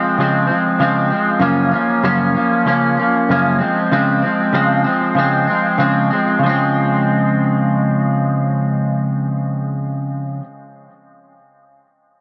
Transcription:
0.00 0.19 F3 soft
0.00 0.18 G#3 medium
0.00 0.17 C4 medium
0.18 0.48 C#3 medium
0.18 0.49 F3 medium
0.18 0.48 G#3 medium
0.18 0.46 C4 medium
0.47 0.79 F3 medium
0.47 0.80 G#3 soft
0.47 0.79 C4 medium
0.79 1.10 C#3 medium
0.79 1.11 F3 medium
0.79 1.11 G#3 medium
0.79 1.09 C4 medium
1.10 1.40 F3 soft
1.10 1.42 G#3 medium
1.10 1.41 C4 medium
1.39 1.72 F#2 medium
1.39 1.72 C#3 medium
1.39 1.72 F3 medium
1.39 1.72 A#3 medium
1.39 1.70 C#4 medium
1.71 2.03 A#3 soft
1.71 2.03 C#4 medium
1.75 2.03 F3 soft
2.03 2.35 F#2 medium
2.03 2.35 C#3 medium
2.03 2.35 F3 medium
2.03 2.36 A#3 medium
2.03 2.33 C#4 loud
2.34 2.65 F3 medium
2.34 2.66 A#3 medium
2.34 2.66 C#4 medium
2.65 2.97 C#3 medium
2.65 2.98 F3 medium
2.65 2.98 A#3 medium
2.65 2.96 C#4 medium
2.97 3.30 A#3 medium
2.97 3.29 C#4 medium
3.01 3.30 F3 soft
3.29 3.60 F#2 medium
3.29 3.61 C#3 medium
3.29 3.61 F3 medium
3.29 3.60 A#3 medium
3.29 3.58 C#4 medium
3.59 3.92 G#3 medium
3.59 3.91 C4 medium
3.63 3.91 F3 soft
3.91 4.23 C#3 medium
3.91 4.23 F3 medium
3.91 4.23 G#3 loud
3.91 4.21 C4 loud
4.22 4.53 G#3 soft
4.22 4.53 C4 medium
4.26 4.53 F3 soft
4.53 4.85 C#3 medium
4.53 4.85 F3 medium
4.53 4.85 G#3 medium
4.53 4.83 C4 medium
4.84 5.17 G#3 medium
4.84 5.16 C4 medium
4.88 5.15 F3 medium
5.15 5.47 C#3 medium
5.15 5.48 F3 medium
5.15 5.49 G#3 medium
5.19 5.46 C4 medium
5.47 5.79 G#3 medium
5.47 5.79 C4 medium
5.52 5.78 F3 soft
5.78 6.10 C#3 medium
5.78 6.10 F3 medium
5.78 6.11 G#3 medium
5.78 6.09 C4 medium
6.10 6.43 G#3 medium
6.10 6.41 C4 medium
6.15 6.42 F3 soft
6.39 10.40 C#3 medium
6.43 10.42 F3 medium
6.43 10.44 G#3 medium
6.49 10.45 C4 medium

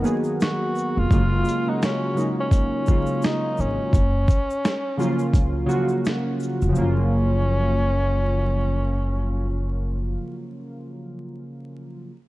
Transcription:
0.00 0.02 D#3 loud
0.00 0.74 D#3 medium
0.00 0.03 F#3 medium
0.00 0.75 F#3 medium
0.00 0.75 A#3 medium
0.00 0.04 B3 medium
0.00 0.12 B3 loud
0.00 1.12 F#4 medium
0.00 1.12 A#4 medium
0.04 0.75 B3 medium
0.04 0.76 G#4 medium
0.04 shaker soft
0.06 shaker soft
0.24 shaker soft
0.40 1.00 F#4 medium
0.40 finger snap medium
0.40 snare loud
0.40 closed hi-hat medium
0.40 shaker medium
0.75 shaker soft
0.78 shaker soft
0.97 1.09 F1 medium
0.97 1.71 F4 loud
1.11 1.41 F#1 loud
1.11 1.46 C#3 medium
1.11 1.47 F#3 medium
1.11 1.47 G#3 medium
1.11 1.48 A#3 medium
1.11 1.48 F4 loud
1.11 kick loud
1.11 closed hi-hat medium
1.11 shaker medium
1.45 closed hi-hat soft
1.45 shaker medium
1.49 shaker soft
1.66 2.02 C#3 medium
1.66 2.02 F#3 medium
1.66 2.02 G#3 medium
1.66 2.03 A#3 medium
1.66 1.82 D#4 medium
1.66 2.03 F#4 medium
1.82 2.35 C#4 medium
1.82 finger snap medium
1.82 snare loud
1.82 closed hi-hat medium
1.82 shaker medium
2.14 2.65 C#3 medium
2.14 2.65 F#3 medium
2.14 2.66 G#3 medium
2.14 2.66 A#3 medium
2.14 2.66 D#4 medium
2.14 shaker soft
2.20 shaker soft
2.40 3.26 C#4 medium
2.51 kick loud
2.51 closed hi-hat medium
2.51 shaker medium
2.86 3.83 C#3 medium
2.86 3.84 F#3 medium
2.86 kick medium
2.86 shaker soft
2.88 3.84 G#3 medium
2.88 3.85 A#3 medium
2.88 3.85 F4 medium
2.88 shaker medium
3.06 shaker soft
3.22 3.62 D#4 medium
3.22 finger snap medium
3.22 snare loud
3.22 closed hi-hat medium
3.22 shaker medium
3.57 3.76 G#1 medium
3.57 6.06 C#4 medium
3.57 shaker soft
3.60 shaker soft
3.93 4.24 F#1 medium
3.93 kick loud
3.93 closed hi-hat medium
3.93 shaker medium
4.28 kick loud
4.28 closed hi-hat soft
4.28 shaker soft
4.30 shaker soft
4.50 shaker medium
4.65 finger snap medium
4.65 snare loud
4.65 closed hi-hat medium
4.65 shaker medium
4.97 5.47 C#3 medium
4.97 5.48 F3 medium
4.97 5.48 F#3 medium
4.97 5.48 A#3 medium
4.97 5.49 F4 medium
4.97 shaker soft
5.02 shaker soft
5.19 shaker soft
5.34 5.65 C#2 medium
5.34 kick medium
5.34 closed hi-hat medium
5.34 shaker medium
5.66 6.38 C#3 loud
5.66 6.39 F#3 medium
5.66 6.40 A#3 medium
5.66 6.39 F4 medium
5.66 6.40 F#4 medium
5.66 shaker medium
5.71 shaker soft
5.89 shaker soft
6.05 finger snap medium
6.05 snare medium
6.05 closed hi-hat medium
6.05 shaker medium
6.40 shaker soft
6.43 shaker soft
6.62 6.74 F1 medium
6.62 shaker soft
6.69 10.07 C#3 medium
6.69 10.10 F3 medium
6.75 10.15 F#1 medium
6.75 10.14 F#3 medium
6.75 10.17 A#3 medium
6.75 10.15 C#4 loud
6.75 shaker medium
6.82 10.20 F4 medium

